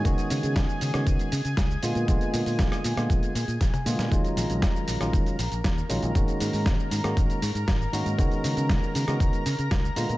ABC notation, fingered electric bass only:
X:1
M:4/4
L:1/16
Q:1/4=118
K:Dbmix
V:1 name="Fingered electric bass" clef=bass
D,, z D, D, D,, z D, D, D,, z D, D, D,, z B,, B,, | B,,, z B,, B,, B,,, z B,, B,, B,,, z B,, B,, B,,, z B,, B,, | E,, z B,,, B,,, E,, z B,,, B,,, E,, z B,,, B,,, E,, z B,,, B,,, | A,,, z A,, A,, A,,, z A,, A,, A,,, z A,, A,, A,,, z A,, A,, |
D,, z D, D, D,, z D, D, D,, z D, D, D,, z B,, B,, |]